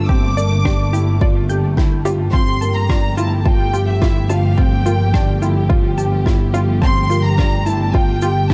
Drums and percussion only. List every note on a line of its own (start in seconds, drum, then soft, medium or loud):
0.09 kick loud
0.38 shaker medium
0.65 kick loud
0.65 cross-stick loud
0.94 shaker medium
1.21 kick loud
1.49 shaker medium
1.77 kick loud
1.77 cross-stick medium
2.06 shaker medium
2.33 kick loud
2.62 shaker medium
2.89 kick loud
2.89 cross-stick loud
3.18 shaker medium
3.46 kick loud
3.74 shaker medium
4.02 kick loud
4.02 cross-stick medium
4.30 shaker medium
4.58 kick loud
4.86 shaker medium
5.14 kick loud
5.14 cross-stick medium
5.42 shaker medium
5.70 kick loud
5.98 shaker medium
6.26 kick loud
6.26 cross-stick medium
6.54 shaker medium
6.82 kick loud
7.11 shaker medium
7.38 kick loud
7.38 cross-stick medium
7.66 shaker medium
7.94 kick loud
8.22 shaker medium
8.50 kick loud
8.50 cross-stick medium